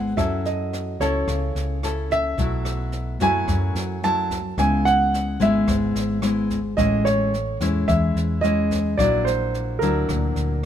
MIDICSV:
0, 0, Header, 1, 5, 480
1, 0, Start_track
1, 0, Tempo, 550459
1, 152, Time_signature, 4, 2, 24, 8
1, 9289, End_track
2, 0, Start_track
2, 0, Title_t, "Grand piano"
2, 0, Program_c, 0, 0
2, 0, Note_on_c, 0, 78, 77
2, 122, Note_off_c, 0, 78, 0
2, 149, Note_on_c, 0, 76, 73
2, 398, Note_off_c, 0, 76, 0
2, 400, Note_on_c, 0, 75, 68
2, 842, Note_off_c, 0, 75, 0
2, 877, Note_on_c, 0, 73, 75
2, 1848, Note_on_c, 0, 76, 94
2, 1862, Note_off_c, 0, 73, 0
2, 2811, Note_on_c, 0, 80, 104
2, 2827, Note_off_c, 0, 76, 0
2, 3524, Note_on_c, 0, 81, 94
2, 3542, Note_off_c, 0, 80, 0
2, 3964, Note_off_c, 0, 81, 0
2, 4002, Note_on_c, 0, 80, 87
2, 4232, Note_on_c, 0, 78, 93
2, 4243, Note_off_c, 0, 80, 0
2, 4726, Note_off_c, 0, 78, 0
2, 4729, Note_on_c, 0, 76, 85
2, 5645, Note_off_c, 0, 76, 0
2, 5902, Note_on_c, 0, 75, 86
2, 6147, Note_on_c, 0, 73, 82
2, 6154, Note_off_c, 0, 75, 0
2, 6595, Note_off_c, 0, 73, 0
2, 6870, Note_on_c, 0, 76, 86
2, 7336, Note_on_c, 0, 75, 91
2, 7365, Note_off_c, 0, 76, 0
2, 7826, Note_on_c, 0, 74, 84
2, 7839, Note_off_c, 0, 75, 0
2, 8064, Note_on_c, 0, 72, 75
2, 8077, Note_off_c, 0, 74, 0
2, 8536, Note_on_c, 0, 70, 72
2, 8563, Note_off_c, 0, 72, 0
2, 9289, Note_off_c, 0, 70, 0
2, 9289, End_track
3, 0, Start_track
3, 0, Title_t, "Nylon-string guitar"
3, 0, Program_c, 1, 24
3, 0, Note_on_c, 1, 44, 47
3, 0, Note_on_c, 1, 56, 43
3, 0, Note_on_c, 1, 59, 46
3, 0, Note_on_c, 1, 64, 52
3, 108, Note_off_c, 1, 56, 0
3, 113, Note_off_c, 1, 59, 0
3, 114, Note_off_c, 1, 64, 0
3, 124, Note_off_c, 1, 44, 0
3, 144, Note_on_c, 1, 54, 47
3, 151, Note_on_c, 1, 61, 47
3, 154, Note_on_c, 1, 64, 44
3, 156, Note_on_c, 1, 69, 56
3, 831, Note_off_c, 1, 61, 0
3, 834, Note_off_c, 1, 64, 0
3, 835, Note_off_c, 1, 69, 0
3, 879, Note_on_c, 1, 61, 55
3, 882, Note_on_c, 1, 64, 56
3, 883, Note_on_c, 1, 69, 58
3, 1084, Note_off_c, 1, 54, 0
3, 1123, Note_on_c, 1, 49, 48
3, 1557, Note_off_c, 1, 61, 0
3, 1557, Note_off_c, 1, 64, 0
3, 1559, Note_off_c, 1, 69, 0
3, 1597, Note_on_c, 1, 61, 44
3, 1604, Note_on_c, 1, 64, 52
3, 1606, Note_on_c, 1, 69, 53
3, 2036, Note_off_c, 1, 61, 0
3, 2038, Note_off_c, 1, 64, 0
3, 2040, Note_off_c, 1, 69, 0
3, 2052, Note_off_c, 1, 49, 0
3, 2085, Note_on_c, 1, 54, 45
3, 2085, Note_on_c, 1, 57, 45
3, 2086, Note_on_c, 1, 47, 47
3, 2093, Note_on_c, 1, 64, 52
3, 2758, Note_off_c, 1, 57, 0
3, 2759, Note_off_c, 1, 54, 0
3, 2763, Note_off_c, 1, 64, 0
3, 2797, Note_on_c, 1, 54, 54
3, 2800, Note_on_c, 1, 57, 55
3, 2803, Note_on_c, 1, 64, 60
3, 3014, Note_off_c, 1, 47, 0
3, 3040, Note_on_c, 1, 42, 52
3, 3475, Note_off_c, 1, 57, 0
3, 3476, Note_off_c, 1, 54, 0
3, 3478, Note_off_c, 1, 64, 0
3, 3519, Note_on_c, 1, 54, 45
3, 3522, Note_on_c, 1, 57, 49
3, 3528, Note_on_c, 1, 64, 53
3, 3824, Note_off_c, 1, 54, 0
3, 3826, Note_off_c, 1, 57, 0
3, 3827, Note_off_c, 1, 64, 0
3, 3971, Note_off_c, 1, 42, 0
3, 3989, Note_on_c, 1, 49, 45
3, 3995, Note_on_c, 1, 56, 45
3, 3999, Note_on_c, 1, 59, 46
3, 4002, Note_on_c, 1, 64, 45
3, 4673, Note_off_c, 1, 56, 0
3, 4673, Note_off_c, 1, 59, 0
3, 4678, Note_off_c, 1, 64, 0
3, 4707, Note_on_c, 1, 56, 54
3, 4716, Note_on_c, 1, 59, 58
3, 4719, Note_on_c, 1, 64, 54
3, 4927, Note_off_c, 1, 49, 0
3, 4951, Note_on_c, 1, 44, 44
3, 5390, Note_off_c, 1, 56, 0
3, 5395, Note_off_c, 1, 59, 0
3, 5397, Note_off_c, 1, 64, 0
3, 5426, Note_on_c, 1, 56, 43
3, 5430, Note_on_c, 1, 59, 46
3, 5433, Note_on_c, 1, 64, 46
3, 5737, Note_off_c, 1, 56, 0
3, 5739, Note_off_c, 1, 59, 0
3, 5741, Note_off_c, 1, 64, 0
3, 5887, Note_off_c, 1, 44, 0
3, 5907, Note_on_c, 1, 45, 48
3, 5910, Note_on_c, 1, 56, 43
3, 5912, Note_on_c, 1, 61, 46
3, 5914, Note_on_c, 1, 64, 51
3, 6387, Note_off_c, 1, 56, 0
3, 6389, Note_off_c, 1, 61, 0
3, 6389, Note_off_c, 1, 64, 0
3, 6634, Note_on_c, 1, 56, 53
3, 6637, Note_on_c, 1, 61, 49
3, 6641, Note_on_c, 1, 64, 61
3, 6846, Note_off_c, 1, 45, 0
3, 6880, Note_on_c, 1, 52, 48
3, 7315, Note_off_c, 1, 56, 0
3, 7315, Note_off_c, 1, 61, 0
3, 7318, Note_off_c, 1, 64, 0
3, 7350, Note_on_c, 1, 56, 50
3, 7356, Note_on_c, 1, 61, 46
3, 7361, Note_on_c, 1, 64, 50
3, 7793, Note_off_c, 1, 56, 0
3, 7796, Note_off_c, 1, 61, 0
3, 7797, Note_off_c, 1, 64, 0
3, 7813, Note_off_c, 1, 52, 0
3, 7837, Note_on_c, 1, 46, 47
3, 7842, Note_on_c, 1, 54, 49
3, 7847, Note_on_c, 1, 64, 52
3, 7849, Note_on_c, 1, 62, 45
3, 8518, Note_off_c, 1, 54, 0
3, 8520, Note_off_c, 1, 62, 0
3, 8522, Note_off_c, 1, 64, 0
3, 8563, Note_on_c, 1, 54, 53
3, 8566, Note_on_c, 1, 62, 51
3, 8568, Note_on_c, 1, 64, 64
3, 8773, Note_off_c, 1, 46, 0
3, 8803, Note_on_c, 1, 46, 46
3, 9240, Note_off_c, 1, 54, 0
3, 9242, Note_off_c, 1, 62, 0
3, 9243, Note_off_c, 1, 64, 0
3, 9289, Note_off_c, 1, 46, 0
3, 9289, End_track
4, 0, Start_track
4, 0, Title_t, "Fingered electric bass"
4, 0, Program_c, 2, 33
4, 0, Note_on_c, 2, 32, 75
4, 113, Note_off_c, 2, 32, 0
4, 152, Note_on_c, 2, 42, 86
4, 836, Note_off_c, 2, 42, 0
4, 872, Note_on_c, 2, 37, 73
4, 1095, Note_off_c, 2, 37, 0
4, 1111, Note_on_c, 2, 37, 76
4, 1334, Note_off_c, 2, 37, 0
4, 1350, Note_on_c, 2, 37, 72
4, 2035, Note_off_c, 2, 37, 0
4, 2070, Note_on_c, 2, 35, 89
4, 2755, Note_off_c, 2, 35, 0
4, 2789, Note_on_c, 2, 42, 73
4, 3013, Note_off_c, 2, 42, 0
4, 3030, Note_on_c, 2, 42, 78
4, 3253, Note_off_c, 2, 42, 0
4, 3269, Note_on_c, 2, 42, 73
4, 3955, Note_off_c, 2, 42, 0
4, 3991, Note_on_c, 2, 37, 80
4, 4676, Note_off_c, 2, 37, 0
4, 4711, Note_on_c, 2, 32, 66
4, 4934, Note_off_c, 2, 32, 0
4, 4948, Note_on_c, 2, 32, 77
4, 5172, Note_off_c, 2, 32, 0
4, 5183, Note_on_c, 2, 32, 74
4, 5872, Note_off_c, 2, 32, 0
4, 5910, Note_on_c, 2, 33, 91
4, 6596, Note_off_c, 2, 33, 0
4, 6633, Note_on_c, 2, 40, 73
4, 6856, Note_off_c, 2, 40, 0
4, 6870, Note_on_c, 2, 40, 72
4, 7094, Note_off_c, 2, 40, 0
4, 7107, Note_on_c, 2, 40, 77
4, 7795, Note_off_c, 2, 40, 0
4, 7836, Note_on_c, 2, 34, 84
4, 8520, Note_off_c, 2, 34, 0
4, 8554, Note_on_c, 2, 38, 79
4, 8777, Note_off_c, 2, 38, 0
4, 8793, Note_on_c, 2, 38, 74
4, 9017, Note_off_c, 2, 38, 0
4, 9030, Note_on_c, 2, 38, 75
4, 9289, Note_off_c, 2, 38, 0
4, 9289, End_track
5, 0, Start_track
5, 0, Title_t, "Drums"
5, 152, Note_on_c, 9, 36, 48
5, 157, Note_on_c, 9, 37, 52
5, 157, Note_on_c, 9, 38, 21
5, 239, Note_off_c, 9, 36, 0
5, 244, Note_off_c, 9, 37, 0
5, 244, Note_off_c, 9, 38, 0
5, 395, Note_on_c, 9, 38, 18
5, 483, Note_off_c, 9, 38, 0
5, 639, Note_on_c, 9, 38, 21
5, 726, Note_off_c, 9, 38, 0
5, 873, Note_on_c, 9, 36, 21
5, 879, Note_on_c, 9, 38, 20
5, 960, Note_off_c, 9, 36, 0
5, 966, Note_off_c, 9, 38, 0
5, 1113, Note_on_c, 9, 36, 52
5, 1114, Note_on_c, 9, 37, 50
5, 1114, Note_on_c, 9, 38, 20
5, 1200, Note_off_c, 9, 36, 0
5, 1202, Note_off_c, 9, 37, 0
5, 1202, Note_off_c, 9, 38, 0
5, 1360, Note_on_c, 9, 38, 20
5, 1447, Note_off_c, 9, 38, 0
5, 1598, Note_on_c, 9, 37, 53
5, 1598, Note_on_c, 9, 38, 20
5, 1686, Note_off_c, 9, 37, 0
5, 1686, Note_off_c, 9, 38, 0
5, 1834, Note_on_c, 9, 36, 21
5, 1841, Note_on_c, 9, 38, 20
5, 1921, Note_off_c, 9, 36, 0
5, 1928, Note_off_c, 9, 38, 0
5, 2074, Note_on_c, 9, 36, 50
5, 2075, Note_on_c, 9, 38, 21
5, 2161, Note_off_c, 9, 36, 0
5, 2162, Note_off_c, 9, 38, 0
5, 2312, Note_on_c, 9, 37, 49
5, 2312, Note_on_c, 9, 38, 20
5, 2399, Note_off_c, 9, 37, 0
5, 2399, Note_off_c, 9, 38, 0
5, 2547, Note_on_c, 9, 38, 19
5, 2635, Note_off_c, 9, 38, 0
5, 2791, Note_on_c, 9, 36, 20
5, 2791, Note_on_c, 9, 38, 22
5, 2878, Note_off_c, 9, 36, 0
5, 2878, Note_off_c, 9, 38, 0
5, 3032, Note_on_c, 9, 36, 53
5, 3035, Note_on_c, 9, 37, 49
5, 3035, Note_on_c, 9, 38, 21
5, 3119, Note_off_c, 9, 36, 0
5, 3122, Note_off_c, 9, 37, 0
5, 3122, Note_off_c, 9, 38, 0
5, 3274, Note_on_c, 9, 38, 23
5, 3361, Note_off_c, 9, 38, 0
5, 3516, Note_on_c, 9, 38, 18
5, 3604, Note_off_c, 9, 38, 0
5, 3752, Note_on_c, 9, 36, 22
5, 3758, Note_on_c, 9, 38, 21
5, 3839, Note_off_c, 9, 36, 0
5, 3845, Note_off_c, 9, 38, 0
5, 3992, Note_on_c, 9, 36, 49
5, 3993, Note_on_c, 9, 37, 50
5, 3993, Note_on_c, 9, 38, 20
5, 4079, Note_off_c, 9, 36, 0
5, 4081, Note_off_c, 9, 37, 0
5, 4081, Note_off_c, 9, 38, 0
5, 4239, Note_on_c, 9, 38, 19
5, 4326, Note_off_c, 9, 38, 0
5, 4483, Note_on_c, 9, 38, 19
5, 4570, Note_off_c, 9, 38, 0
5, 4711, Note_on_c, 9, 36, 19
5, 4714, Note_on_c, 9, 38, 20
5, 4798, Note_off_c, 9, 36, 0
5, 4801, Note_off_c, 9, 38, 0
5, 4950, Note_on_c, 9, 37, 50
5, 4950, Note_on_c, 9, 38, 19
5, 4951, Note_on_c, 9, 36, 50
5, 5037, Note_off_c, 9, 37, 0
5, 5037, Note_off_c, 9, 38, 0
5, 5038, Note_off_c, 9, 36, 0
5, 5193, Note_on_c, 9, 38, 21
5, 5280, Note_off_c, 9, 38, 0
5, 5425, Note_on_c, 9, 37, 54
5, 5425, Note_on_c, 9, 38, 21
5, 5512, Note_off_c, 9, 37, 0
5, 5512, Note_off_c, 9, 38, 0
5, 5670, Note_on_c, 9, 36, 22
5, 5671, Note_on_c, 9, 38, 22
5, 5757, Note_off_c, 9, 36, 0
5, 5758, Note_off_c, 9, 38, 0
5, 5911, Note_on_c, 9, 38, 22
5, 5912, Note_on_c, 9, 36, 53
5, 5998, Note_off_c, 9, 38, 0
5, 5999, Note_off_c, 9, 36, 0
5, 6158, Note_on_c, 9, 37, 52
5, 6158, Note_on_c, 9, 38, 19
5, 6245, Note_off_c, 9, 37, 0
5, 6245, Note_off_c, 9, 38, 0
5, 6399, Note_on_c, 9, 38, 20
5, 6487, Note_off_c, 9, 38, 0
5, 6632, Note_on_c, 9, 36, 21
5, 6632, Note_on_c, 9, 38, 22
5, 6719, Note_off_c, 9, 38, 0
5, 6720, Note_off_c, 9, 36, 0
5, 6872, Note_on_c, 9, 36, 53
5, 6874, Note_on_c, 9, 37, 51
5, 6874, Note_on_c, 9, 38, 21
5, 6960, Note_off_c, 9, 36, 0
5, 6961, Note_off_c, 9, 37, 0
5, 6961, Note_off_c, 9, 38, 0
5, 7121, Note_on_c, 9, 38, 22
5, 7208, Note_off_c, 9, 38, 0
5, 7356, Note_on_c, 9, 38, 21
5, 7444, Note_off_c, 9, 38, 0
5, 7595, Note_on_c, 9, 36, 20
5, 7596, Note_on_c, 9, 38, 21
5, 7682, Note_off_c, 9, 36, 0
5, 7683, Note_off_c, 9, 38, 0
5, 7836, Note_on_c, 9, 36, 47
5, 7838, Note_on_c, 9, 37, 55
5, 7838, Note_on_c, 9, 38, 21
5, 7924, Note_off_c, 9, 36, 0
5, 7926, Note_off_c, 9, 37, 0
5, 7926, Note_off_c, 9, 38, 0
5, 8082, Note_on_c, 9, 38, 20
5, 8169, Note_off_c, 9, 38, 0
5, 8321, Note_on_c, 9, 38, 18
5, 8408, Note_off_c, 9, 38, 0
5, 8556, Note_on_c, 9, 36, 21
5, 8558, Note_on_c, 9, 38, 22
5, 8643, Note_off_c, 9, 36, 0
5, 8646, Note_off_c, 9, 38, 0
5, 8797, Note_on_c, 9, 36, 49
5, 8798, Note_on_c, 9, 37, 52
5, 8798, Note_on_c, 9, 38, 21
5, 8884, Note_off_c, 9, 36, 0
5, 8885, Note_off_c, 9, 37, 0
5, 8885, Note_off_c, 9, 38, 0
5, 9034, Note_on_c, 9, 38, 22
5, 9122, Note_off_c, 9, 38, 0
5, 9289, End_track
0, 0, End_of_file